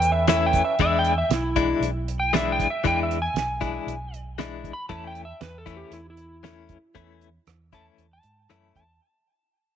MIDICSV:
0, 0, Header, 1, 6, 480
1, 0, Start_track
1, 0, Tempo, 512821
1, 739, Time_signature, 4, 2, 24, 8
1, 9133, End_track
2, 0, Start_track
2, 0, Title_t, "Electric slide guitar"
2, 0, Program_c, 0, 29
2, 0, Note_on_c, 0, 79, 82
2, 98, Note_off_c, 0, 79, 0
2, 112, Note_on_c, 0, 76, 74
2, 260, Note_off_c, 0, 76, 0
2, 273, Note_on_c, 0, 76, 94
2, 421, Note_off_c, 0, 76, 0
2, 435, Note_on_c, 0, 79, 84
2, 582, Note_off_c, 0, 79, 0
2, 604, Note_on_c, 0, 76, 76
2, 747, Note_off_c, 0, 76, 0
2, 768, Note_on_c, 0, 76, 94
2, 909, Note_off_c, 0, 76, 0
2, 924, Note_on_c, 0, 79, 80
2, 1067, Note_off_c, 0, 79, 0
2, 1104, Note_on_c, 0, 76, 88
2, 1238, Note_off_c, 0, 76, 0
2, 1252, Note_on_c, 0, 64, 89
2, 1702, Note_off_c, 0, 64, 0
2, 2055, Note_on_c, 0, 79, 92
2, 2193, Note_off_c, 0, 79, 0
2, 2210, Note_on_c, 0, 76, 88
2, 2351, Note_off_c, 0, 76, 0
2, 2361, Note_on_c, 0, 79, 89
2, 2506, Note_off_c, 0, 79, 0
2, 2531, Note_on_c, 0, 76, 73
2, 2671, Note_off_c, 0, 76, 0
2, 2687, Note_on_c, 0, 79, 96
2, 2830, Note_off_c, 0, 79, 0
2, 2837, Note_on_c, 0, 76, 73
2, 2985, Note_off_c, 0, 76, 0
2, 3012, Note_on_c, 0, 80, 100
2, 3929, Note_off_c, 0, 80, 0
2, 4431, Note_on_c, 0, 83, 96
2, 4574, Note_off_c, 0, 83, 0
2, 4578, Note_on_c, 0, 81, 87
2, 4735, Note_off_c, 0, 81, 0
2, 4748, Note_on_c, 0, 79, 78
2, 4900, Note_off_c, 0, 79, 0
2, 4914, Note_on_c, 0, 76, 83
2, 5061, Note_on_c, 0, 71, 76
2, 5063, Note_off_c, 0, 76, 0
2, 5217, Note_off_c, 0, 71, 0
2, 5223, Note_on_c, 0, 69, 87
2, 5378, Note_off_c, 0, 69, 0
2, 5398, Note_on_c, 0, 67, 74
2, 5545, Note_off_c, 0, 67, 0
2, 5553, Note_on_c, 0, 64, 79
2, 5698, Note_off_c, 0, 64, 0
2, 5709, Note_on_c, 0, 64, 89
2, 6636, Note_off_c, 0, 64, 0
2, 7248, Note_on_c, 0, 81, 76
2, 7351, Note_off_c, 0, 81, 0
2, 7612, Note_on_c, 0, 81, 68
2, 8177, Note_off_c, 0, 81, 0
2, 8203, Note_on_c, 0, 81, 81
2, 8423, Note_off_c, 0, 81, 0
2, 9133, End_track
3, 0, Start_track
3, 0, Title_t, "Harmonium"
3, 0, Program_c, 1, 20
3, 0, Note_on_c, 1, 52, 61
3, 0, Note_on_c, 1, 61, 57
3, 0, Note_on_c, 1, 69, 60
3, 0, Note_on_c, 1, 71, 66
3, 700, Note_off_c, 1, 52, 0
3, 700, Note_off_c, 1, 69, 0
3, 700, Note_off_c, 1, 71, 0
3, 702, Note_off_c, 1, 61, 0
3, 9133, End_track
4, 0, Start_track
4, 0, Title_t, "Clean electric guitar"
4, 0, Program_c, 2, 27
4, 262, Note_on_c, 2, 52, 71
4, 264, Note_on_c, 2, 57, 79
4, 268, Note_on_c, 2, 61, 85
4, 276, Note_on_c, 2, 64, 85
4, 572, Note_off_c, 2, 52, 0
4, 574, Note_off_c, 2, 57, 0
4, 575, Note_off_c, 2, 61, 0
4, 579, Note_off_c, 2, 64, 0
4, 747, Note_on_c, 2, 52, 83
4, 750, Note_on_c, 2, 56, 81
4, 756, Note_on_c, 2, 62, 85
4, 757, Note_on_c, 2, 64, 88
4, 1055, Note_off_c, 2, 52, 0
4, 1056, Note_off_c, 2, 56, 0
4, 1060, Note_off_c, 2, 62, 0
4, 1060, Note_off_c, 2, 64, 0
4, 1462, Note_on_c, 2, 64, 93
4, 1466, Note_on_c, 2, 62, 89
4, 1470, Note_on_c, 2, 56, 75
4, 1479, Note_on_c, 2, 52, 69
4, 1773, Note_off_c, 2, 64, 0
4, 1775, Note_off_c, 2, 62, 0
4, 1777, Note_off_c, 2, 56, 0
4, 1781, Note_off_c, 2, 52, 0
4, 2182, Note_on_c, 2, 56, 76
4, 2185, Note_on_c, 2, 52, 80
4, 2190, Note_on_c, 2, 62, 83
4, 2192, Note_on_c, 2, 64, 77
4, 2494, Note_off_c, 2, 56, 0
4, 2495, Note_off_c, 2, 52, 0
4, 2497, Note_off_c, 2, 62, 0
4, 2499, Note_off_c, 2, 64, 0
4, 2658, Note_on_c, 2, 52, 84
4, 2663, Note_on_c, 2, 56, 79
4, 2664, Note_on_c, 2, 62, 78
4, 2672, Note_on_c, 2, 64, 85
4, 2971, Note_off_c, 2, 52, 0
4, 2974, Note_off_c, 2, 56, 0
4, 2975, Note_off_c, 2, 62, 0
4, 2979, Note_off_c, 2, 64, 0
4, 3378, Note_on_c, 2, 64, 89
4, 3381, Note_on_c, 2, 62, 84
4, 3382, Note_on_c, 2, 56, 74
4, 3384, Note_on_c, 2, 52, 65
4, 3692, Note_off_c, 2, 64, 0
4, 3694, Note_off_c, 2, 56, 0
4, 3694, Note_off_c, 2, 62, 0
4, 3695, Note_off_c, 2, 52, 0
4, 4103, Note_on_c, 2, 56, 86
4, 4105, Note_on_c, 2, 52, 74
4, 4114, Note_on_c, 2, 64, 80
4, 4117, Note_on_c, 2, 62, 86
4, 4415, Note_off_c, 2, 52, 0
4, 4415, Note_off_c, 2, 56, 0
4, 4420, Note_off_c, 2, 64, 0
4, 4422, Note_off_c, 2, 62, 0
4, 4579, Note_on_c, 2, 52, 75
4, 4582, Note_on_c, 2, 57, 80
4, 4587, Note_on_c, 2, 61, 84
4, 4591, Note_on_c, 2, 64, 84
4, 4893, Note_off_c, 2, 52, 0
4, 4894, Note_off_c, 2, 57, 0
4, 4897, Note_off_c, 2, 61, 0
4, 4898, Note_off_c, 2, 64, 0
4, 5297, Note_on_c, 2, 64, 77
4, 5304, Note_on_c, 2, 61, 79
4, 5306, Note_on_c, 2, 52, 68
4, 5306, Note_on_c, 2, 57, 76
4, 5612, Note_off_c, 2, 64, 0
4, 5615, Note_off_c, 2, 61, 0
4, 5616, Note_off_c, 2, 52, 0
4, 5616, Note_off_c, 2, 57, 0
4, 6021, Note_on_c, 2, 52, 68
4, 6028, Note_on_c, 2, 57, 79
4, 6028, Note_on_c, 2, 61, 85
4, 6034, Note_on_c, 2, 64, 80
4, 6333, Note_off_c, 2, 52, 0
4, 6336, Note_off_c, 2, 57, 0
4, 6336, Note_off_c, 2, 61, 0
4, 6340, Note_off_c, 2, 64, 0
4, 6502, Note_on_c, 2, 57, 79
4, 6504, Note_on_c, 2, 52, 83
4, 6510, Note_on_c, 2, 61, 78
4, 6512, Note_on_c, 2, 64, 88
4, 6813, Note_off_c, 2, 57, 0
4, 6814, Note_off_c, 2, 52, 0
4, 6817, Note_off_c, 2, 61, 0
4, 6818, Note_off_c, 2, 64, 0
4, 7233, Note_on_c, 2, 64, 79
4, 7238, Note_on_c, 2, 61, 77
4, 7246, Note_on_c, 2, 52, 71
4, 7248, Note_on_c, 2, 57, 76
4, 7538, Note_off_c, 2, 64, 0
4, 7541, Note_off_c, 2, 61, 0
4, 7545, Note_off_c, 2, 52, 0
4, 7546, Note_off_c, 2, 57, 0
4, 7953, Note_on_c, 2, 52, 65
4, 7956, Note_on_c, 2, 57, 81
4, 7959, Note_on_c, 2, 61, 82
4, 7968, Note_on_c, 2, 64, 89
4, 8257, Note_off_c, 2, 52, 0
4, 8258, Note_off_c, 2, 57, 0
4, 8260, Note_off_c, 2, 61, 0
4, 8265, Note_off_c, 2, 64, 0
4, 9133, End_track
5, 0, Start_track
5, 0, Title_t, "Fingered electric bass"
5, 0, Program_c, 3, 33
5, 0, Note_on_c, 3, 40, 82
5, 563, Note_off_c, 3, 40, 0
5, 747, Note_on_c, 3, 40, 93
5, 1137, Note_off_c, 3, 40, 0
5, 1212, Note_on_c, 3, 35, 103
5, 1608, Note_off_c, 3, 35, 0
5, 1685, Note_on_c, 3, 35, 82
5, 2477, Note_off_c, 3, 35, 0
5, 2669, Note_on_c, 3, 40, 100
5, 3059, Note_off_c, 3, 40, 0
5, 3125, Note_on_c, 3, 35, 93
5, 3525, Note_off_c, 3, 35, 0
5, 3617, Note_on_c, 3, 35, 86
5, 4405, Note_off_c, 3, 35, 0
5, 4582, Note_on_c, 3, 40, 96
5, 4975, Note_off_c, 3, 40, 0
5, 5060, Note_on_c, 3, 40, 99
5, 5454, Note_off_c, 3, 40, 0
5, 5532, Note_on_c, 3, 40, 77
5, 6321, Note_off_c, 3, 40, 0
5, 6510, Note_on_c, 3, 40, 97
5, 6899, Note_off_c, 3, 40, 0
5, 6992, Note_on_c, 3, 40, 98
5, 7379, Note_off_c, 3, 40, 0
5, 7468, Note_on_c, 3, 40, 81
5, 7660, Note_off_c, 3, 40, 0
5, 7711, Note_on_c, 3, 44, 70
5, 7922, Note_off_c, 3, 44, 0
5, 7960, Note_on_c, 3, 42, 71
5, 8166, Note_off_c, 3, 42, 0
5, 8200, Note_on_c, 3, 40, 64
5, 8405, Note_off_c, 3, 40, 0
5, 9133, End_track
6, 0, Start_track
6, 0, Title_t, "Drums"
6, 18, Note_on_c, 9, 42, 57
6, 23, Note_on_c, 9, 82, 69
6, 111, Note_off_c, 9, 42, 0
6, 116, Note_off_c, 9, 82, 0
6, 257, Note_on_c, 9, 42, 78
6, 263, Note_on_c, 9, 38, 94
6, 268, Note_on_c, 9, 82, 87
6, 351, Note_off_c, 9, 42, 0
6, 357, Note_off_c, 9, 38, 0
6, 362, Note_off_c, 9, 82, 0
6, 497, Note_on_c, 9, 42, 52
6, 503, Note_on_c, 9, 36, 76
6, 512, Note_on_c, 9, 82, 62
6, 591, Note_off_c, 9, 42, 0
6, 597, Note_off_c, 9, 36, 0
6, 606, Note_off_c, 9, 82, 0
6, 737, Note_on_c, 9, 42, 66
6, 744, Note_on_c, 9, 36, 86
6, 831, Note_off_c, 9, 42, 0
6, 838, Note_off_c, 9, 36, 0
6, 977, Note_on_c, 9, 42, 50
6, 1071, Note_off_c, 9, 42, 0
6, 1223, Note_on_c, 9, 42, 89
6, 1228, Note_on_c, 9, 38, 106
6, 1316, Note_off_c, 9, 42, 0
6, 1322, Note_off_c, 9, 38, 0
6, 1460, Note_on_c, 9, 42, 64
6, 1465, Note_on_c, 9, 36, 81
6, 1554, Note_off_c, 9, 42, 0
6, 1559, Note_off_c, 9, 36, 0
6, 1709, Note_on_c, 9, 42, 75
6, 1803, Note_off_c, 9, 42, 0
6, 1949, Note_on_c, 9, 42, 60
6, 2043, Note_off_c, 9, 42, 0
6, 2192, Note_on_c, 9, 42, 80
6, 2198, Note_on_c, 9, 38, 104
6, 2286, Note_off_c, 9, 42, 0
6, 2292, Note_off_c, 9, 38, 0
6, 2430, Note_on_c, 9, 36, 70
6, 2431, Note_on_c, 9, 42, 55
6, 2524, Note_off_c, 9, 36, 0
6, 2525, Note_off_c, 9, 42, 0
6, 2666, Note_on_c, 9, 42, 72
6, 2668, Note_on_c, 9, 36, 84
6, 2760, Note_off_c, 9, 42, 0
6, 2761, Note_off_c, 9, 36, 0
6, 2911, Note_on_c, 9, 42, 52
6, 3005, Note_off_c, 9, 42, 0
6, 3147, Note_on_c, 9, 42, 83
6, 3152, Note_on_c, 9, 38, 107
6, 3240, Note_off_c, 9, 42, 0
6, 3246, Note_off_c, 9, 38, 0
6, 3388, Note_on_c, 9, 36, 81
6, 3388, Note_on_c, 9, 42, 53
6, 3481, Note_off_c, 9, 36, 0
6, 3482, Note_off_c, 9, 42, 0
6, 3633, Note_on_c, 9, 42, 69
6, 3727, Note_off_c, 9, 42, 0
6, 3873, Note_on_c, 9, 42, 52
6, 3966, Note_off_c, 9, 42, 0
6, 4105, Note_on_c, 9, 42, 72
6, 4111, Note_on_c, 9, 38, 103
6, 4199, Note_off_c, 9, 42, 0
6, 4205, Note_off_c, 9, 38, 0
6, 4345, Note_on_c, 9, 36, 70
6, 4350, Note_on_c, 9, 42, 49
6, 4439, Note_off_c, 9, 36, 0
6, 4444, Note_off_c, 9, 42, 0
6, 4579, Note_on_c, 9, 42, 67
6, 4583, Note_on_c, 9, 36, 92
6, 4672, Note_off_c, 9, 42, 0
6, 4677, Note_off_c, 9, 36, 0
6, 4823, Note_on_c, 9, 42, 47
6, 4917, Note_off_c, 9, 42, 0
6, 5063, Note_on_c, 9, 42, 80
6, 5069, Note_on_c, 9, 38, 102
6, 5157, Note_off_c, 9, 42, 0
6, 5163, Note_off_c, 9, 38, 0
6, 5304, Note_on_c, 9, 36, 78
6, 5305, Note_on_c, 9, 42, 58
6, 5397, Note_off_c, 9, 36, 0
6, 5399, Note_off_c, 9, 42, 0
6, 5538, Note_on_c, 9, 42, 75
6, 5632, Note_off_c, 9, 42, 0
6, 5777, Note_on_c, 9, 42, 56
6, 5870, Note_off_c, 9, 42, 0
6, 6028, Note_on_c, 9, 42, 77
6, 6034, Note_on_c, 9, 38, 101
6, 6122, Note_off_c, 9, 42, 0
6, 6127, Note_off_c, 9, 38, 0
6, 6261, Note_on_c, 9, 42, 57
6, 6267, Note_on_c, 9, 36, 72
6, 6354, Note_off_c, 9, 42, 0
6, 6361, Note_off_c, 9, 36, 0
6, 6505, Note_on_c, 9, 42, 71
6, 6509, Note_on_c, 9, 36, 87
6, 6599, Note_off_c, 9, 42, 0
6, 6603, Note_off_c, 9, 36, 0
6, 6752, Note_on_c, 9, 42, 49
6, 6846, Note_off_c, 9, 42, 0
6, 6991, Note_on_c, 9, 42, 76
6, 6997, Note_on_c, 9, 37, 98
6, 7085, Note_off_c, 9, 42, 0
6, 7091, Note_off_c, 9, 37, 0
6, 7232, Note_on_c, 9, 36, 75
6, 7235, Note_on_c, 9, 42, 58
6, 7326, Note_off_c, 9, 36, 0
6, 7328, Note_off_c, 9, 42, 0
6, 7473, Note_on_c, 9, 42, 67
6, 7566, Note_off_c, 9, 42, 0
6, 7705, Note_on_c, 9, 42, 55
6, 7799, Note_off_c, 9, 42, 0
6, 7957, Note_on_c, 9, 42, 62
6, 7962, Note_on_c, 9, 37, 94
6, 8050, Note_off_c, 9, 42, 0
6, 8056, Note_off_c, 9, 37, 0
6, 8196, Note_on_c, 9, 36, 69
6, 8198, Note_on_c, 9, 42, 46
6, 8290, Note_off_c, 9, 36, 0
6, 8292, Note_off_c, 9, 42, 0
6, 9133, End_track
0, 0, End_of_file